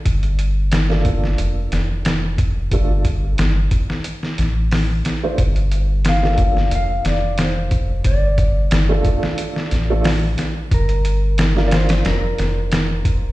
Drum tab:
HH |xxx-x-x-x-x-x-x-|x-x-x-x-x-x-o-x-|xxx-x-x-x-x-x-x-|x-x-x-x-x-x-o-x-|
SD |----oo-o--o-o---|----o--o-oo-o-o-|----oo-o--o-o---|----o--o-oo-o-o-|
BD |o-----o-------o-|o-o---o---------|o-----o-------o-|o-o---o---------|

HH |xxx-x-xxx-x-x-x-|
SD |----ooooo-o-o---|
BD |o-------------o-|